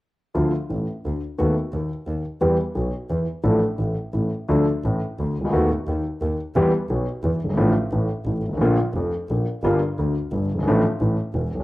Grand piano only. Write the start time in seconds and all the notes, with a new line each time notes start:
0.34 D2 D3 F3 A3 F4
0.69 A1 A2
1.05 D2 D3
1.38 D#2 D#3 A3 B3 F#4
1.73 D#2 D#3
2.07 D#2 D#3
2.41 E2 E3 G3 B3 G4
2.75 B1 B2
3.10 E2 E3
3.44 A1 A2 F3 A3 D4 A4
3.78 A1 A2
4.13 A1 A2
4.49 D2 D3 F3 A3 D4 A4
4.85 A1 A2
5.20 D2 D3
5.41 C2 C#2
5.49 D2 D#3 A3
5.53 D#2 B3 F#4
5.89 D#2 D#3
6.21 D#2 D#3
6.56 E2 E3 G3 B3 G4
6.90 B1 B2
7.24 E2 E3
7.44 F#1
7.49 G1
7.53 G#1 A1 A2 D3 F3
7.58 A3 F4
7.93 A1 A2
8.27 A1 A2
8.48 G1
8.53 G#1
8.57 A1 D3 F3
8.61 A#1 A#2 A#3 F4
8.96 F1 F2
9.31 A#1 A#2
9.64 G1 G2 D3 G3 A#3 F4
9.99 D2 D3
10.33 G1 G2
10.54 F#1 G1
10.63 G#1
10.67 A1 A2 D3 F3 A3 F4
11.01 A1 A2
11.35 E1 E2
11.55 B1
11.60 C2